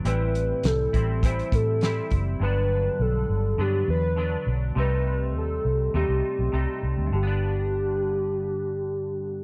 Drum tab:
HH |x-x-x-x-xxx-x-x-|----------------|----------------|----------------|
SD |----o-------o---|----------------|----------------|----------------|
BD |------o-o-o---o-|----------------|----------------|----------------|